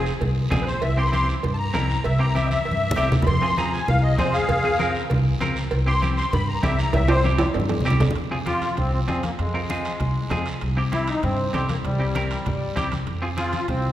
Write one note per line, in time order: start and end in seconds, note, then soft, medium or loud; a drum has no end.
0.00 0.11 C4 medium
0.00 0.12 F4 medium
0.00 0.12 G#4 medium
0.06 short guiro medium
0.21 0.46 C2 loud
0.21 cowbell medium
0.21 high conga soft
0.21 low conga medium
0.21 long guiro medium
0.50 0.76 A#1 loud
0.50 0.67 C4 medium
0.50 0.67 F4 medium
0.50 0.68 G#4 loud
0.50 high conga medium
0.50 low conga medium
0.50 low timbale medium
0.50 short guiro medium
0.62 0.64 B4 medium
0.67 0.82 C5 medium
0.67 short guiro medium
0.82 1.31 C2 loud
0.82 0.97 E5 medium
0.82 cowbell loud
0.82 high conga soft
0.82 long guiro medium
0.97 1.03 C4 medium
0.97 1.03 E4 medium
0.97 1.03 G4 medium
0.97 1.10 C6 medium
1.07 1.10 B5 medium
1.12 1.34 C4 medium
1.12 1.34 E4 medium
1.12 1.34 G4 medium
1.12 1.27 C6 loud
1.12 high conga medium
1.12 short guiro medium
1.28 short guiro medium
1.43 1.68 G2 loud
1.43 cowbell medium
1.43 high conga soft
1.43 low conga medium
1.43 long guiro medium
1.54 1.56 A5 medium
1.58 2.03 A#5 medium
1.74 1.99 C2 medium
1.74 1.90 C4 medium
1.74 1.90 E4 medium
1.74 1.90 A#4 medium
1.74 high conga medium
1.74 low timbale medium
1.74 short guiro medium
1.90 short guiro medium
2.04 2.54 C2 loud
2.04 2.20 E5 medium
2.04 cowbell loud
2.04 high conga soft
2.04 long guiro medium
2.19 2.25 C4 medium
2.19 2.25 E4 soft
2.19 2.25 G4 medium
2.19 2.35 A#5 medium
2.35 2.56 C4 medium
2.35 2.57 E4 medium
2.35 2.57 G4 medium
2.35 2.49 E5 medium
2.35 high conga medium
2.35 short guiro medium
2.46 2.48 D#5 medium
2.50 3.10 E5 medium
2.50 high conga medium
2.50 short guiro medium
2.65 2.91 G2 loud
2.65 cowbell medium
2.65 long guiro medium
2.72 high conga medium
2.91 low conga loud
2.96 3.21 C2 medium
2.96 3.13 C4 medium
2.96 3.13 E4 medium
2.96 3.13 G4 loud
2.96 low timbale medium
2.96 short guiro medium
3.12 low conga loud
3.12 short guiro medium
3.22 3.25 B5 medium
3.22 low conga loud
3.27 3.76 F2 loud
3.27 3.57 C6 loud
3.27 cowbell loud
3.27 high conga soft
3.27 low conga medium
3.27 long guiro medium
3.42 3.47 C4 medium
3.42 3.48 F4 medium
3.42 3.48 G#4 medium
3.57 3.79 C4 medium
3.57 3.79 F4 medium
3.57 3.79 G#4 medium
3.57 3.72 A#5 medium
3.57 high conga medium
3.57 short guiro medium
3.73 3.88 G#5 medium
3.73 short guiro medium
3.88 4.13 C2 loud
3.88 4.03 F5 medium
3.88 cowbell medium
3.88 high conga soft
3.88 low conga medium
3.88 long guiro medium
4.03 4.18 D#5 medium
4.18 4.35 C4 medium
4.18 4.35 F4 medium
4.18 4.35 G#4 medium
4.18 4.34 C5 medium
4.18 high conga medium
4.18 low conga medium
4.18 low timbale medium
4.18 short guiro medium
4.33 4.91 G#4 medium
4.33 4.93 F5 medium
4.33 short guiro medium
4.49 4.98 F2 loud
4.49 cowbell loud
4.49 high conga soft
4.49 low conga medium
4.49 long guiro medium
4.64 4.70 C4 medium
4.64 4.70 F4 soft
4.64 4.70 G#4 medium
4.79 5.01 C4 medium
4.79 5.01 F4 medium
4.79 5.01 A#4 loud
4.79 high conga medium
4.79 short guiro medium
4.95 short guiro medium
5.10 5.35 C2 loud
5.10 cowbell medium
5.10 high conga soft
5.10 low conga medium
5.10 long guiro medium
5.41 5.65 C#2 loud
5.41 5.57 C4 loud
5.41 5.57 F4 medium
5.41 5.57 A#4 medium
5.41 high conga medium
5.41 short guiro medium
5.56 short guiro medium
5.71 6.21 C2 loud
5.71 cowbell loud
5.71 high conga soft
5.71 long guiro medium
5.86 5.92 C4 medium
5.86 5.92 E4 soft
5.86 5.93 G4 medium
5.86 6.02 C6 loud
6.02 6.23 C4 medium
6.02 6.24 E4 medium
6.02 6.24 G4 medium
6.02 high conga medium
6.02 short guiro medium
6.17 6.32 C6 loud
6.17 short guiro medium
6.33 6.57 G2 loud
6.33 6.48 B5 medium
6.33 cowbell medium
6.33 high conga soft
6.33 low conga medium
6.33 long guiro medium
6.48 6.63 A#5 medium
6.63 6.88 C2 medium
6.63 6.79 C4 medium
6.63 6.79 E4 medium
6.63 6.80 G4 medium
6.63 6.78 E5 medium
6.63 high conga medium
6.63 low conga medium
6.63 low timbale medium
6.63 short guiro medium
6.78 6.93 A#5 medium
6.78 short guiro medium
6.93 7.43 C2 loud
6.93 7.09 E5 medium
6.93 cowbell loud
6.93 high conga soft
6.93 low conga medium
6.93 high timbale medium
6.93 long guiro medium
7.08 7.14 C4 medium
7.08 7.14 E4 medium
7.08 7.14 G4 medium
7.08 7.24 C5 loud
7.08 high timbale loud
7.24 7.46 C4 medium
7.24 7.46 E4 medium
7.24 7.46 G4 medium
7.24 high conga medium
7.24 short guiro medium
7.38 high conga medium
7.38 high timbale loud
7.38 short guiro medium
7.54 7.80 G2 loud
7.54 cowbell medium
7.54 low timbale medium
7.54 long guiro medium
7.60 high conga medium
7.69 high conga medium
7.69 low timbale medium
7.80 low conga medium
7.85 8.10 C2 medium
7.85 8.02 C4 medium
7.85 8.02 E4 medium
7.85 8.02 G4 loud
7.85 short guiro medium
7.90 low conga medium
8.00 low conga loud
8.00 low timbale medium
8.00 short guiro medium
8.11 low conga loud
8.15 8.65 F2 medium
8.15 high conga soft
8.15 high timbale medium
8.15 long guiro medium
8.31 8.37 C4 medium
8.31 8.37 F4 medium
8.31 8.37 G#4 medium
8.46 8.68 C4 medium
8.46 8.68 F4 medium
8.46 8.76 F4 loud
8.46 8.68 G4 medium
8.46 high conga medium
8.46 high timbale medium
8.46 short guiro medium
8.62 high conga medium
8.62 high timbale medium
8.62 short guiro medium
8.77 9.02 C2 loud
8.77 8.92 C4 medium
8.77 low conga medium
8.77 high timbale medium
8.77 long guiro medium
8.93 9.00 C4 medium
8.93 high conga soft
9.08 9.33 F2 medium
9.08 9.24 C4 medium
9.08 9.23 C4 medium
9.08 9.24 F4 medium
9.08 9.24 G#4 medium
9.08 high conga medium
9.08 high timbale medium
9.08 low timbale medium
9.08 short guiro medium
9.23 9.31 A#3 medium
9.23 high conga medium
9.23 high timbale medium
9.23 short guiro medium
9.39 9.88 F2 loud
9.39 10.42 G#3 medium
9.39 high conga soft
9.39 high timbale medium
9.39 long guiro medium
9.54 9.60 C4 medium
9.54 9.60 F4 medium
9.54 9.60 A#4 medium
9.69 9.91 C4 medium
9.69 9.91 F4 soft
9.69 9.92 G#4 medium
9.69 high conga medium
9.69 high timbale medium
9.69 short guiro medium
9.85 high timbale medium
9.85 short guiro medium
10.00 10.25 C2 medium
10.00 low conga medium
10.00 high timbale medium
10.00 long guiro medium
10.16 high conga soft
10.30 10.56 F2 medium
10.30 10.47 C4 medium
10.30 10.47 F4 medium
10.30 10.47 G#4 medium
10.30 high conga medium
10.30 low conga medium
10.30 high timbale medium
10.30 low timbale medium
10.30 short guiro medium
10.46 high timbale medium
10.46 short guiro medium
10.61 11.11 C2 medium
10.61 high conga soft
10.61 high timbale medium
10.61 long guiro medium
10.77 10.82 C4 medium
10.77 10.83 E4 medium
10.77 10.83 G4 medium
10.92 11.14 C4 medium
10.92 11.14 E4 medium
10.92 11.09 E4 medium
10.92 11.14 G4 medium
10.92 high conga medium
10.92 high timbale medium
10.92 short guiro medium
11.07 11.24 D#4 medium
11.07 high timbale medium
11.07 short guiro medium
11.23 11.48 G2 loud
11.23 11.52 C4 loud
11.23 low conga medium
11.23 high timbale medium
11.23 long guiro medium
11.39 high conga soft
11.53 11.78 C2 medium
11.53 11.70 C4 medium
11.53 11.68 C4 medium
11.53 11.70 E4 medium
11.53 11.70 G4 medium
11.53 high conga medium
11.53 high timbale medium
11.53 low timbale medium
11.53 short guiro medium
11.69 11.76 A#3 medium
11.69 high conga medium
11.69 high timbale medium
11.69 short guiro medium
11.84 12.33 C2 loud
11.84 12.88 G3 medium
11.84 high conga soft
11.84 low conga medium
11.84 high timbale medium
11.84 long guiro medium
11.99 12.05 C4 medium
11.99 12.05 E4 soft
11.99 12.05 G4 medium
12.15 12.37 C4 medium
12.15 12.37 E4 medium
12.15 12.37 A#4 medium
12.15 high conga medium
12.15 high timbale medium
12.15 short guiro medium
12.31 high timbale medium
12.31 short guiro medium
12.46 12.70 G2 medium
12.46 low conga medium
12.46 high timbale medium
12.46 long guiro medium
12.62 high conga soft
12.76 13.01 C2 medium
12.76 12.92 C4 medium
12.76 12.92 E4 medium
12.76 12.93 G4 medium
12.76 high conga medium
12.76 low conga medium
12.76 high timbale medium
12.76 short guiro medium
12.92 high conga medium
12.92 high timbale medium
12.92 short guiro medium
13.07 13.56 F2 loud
13.07 high conga soft
13.07 high timbale medium
13.07 long guiro medium
13.22 13.28 C4 medium
13.22 13.28 F4 medium
13.22 13.28 G#4 medium
13.37 13.59 C4 medium
13.37 13.66 F4 medium
13.37 13.59 F4 medium
13.37 13.67 F4 medium
13.37 13.59 G#4 medium
13.37 high conga medium
13.37 high timbale medium
13.37 short guiro medium
13.53 high conga medium
13.53 high timbale medium
13.53 short guiro medium
13.68 13.92 C2 loud
13.68 13.92 C4 medium
13.68 low conga medium
13.68 high timbale medium
13.68 long guiro medium
13.84 high conga soft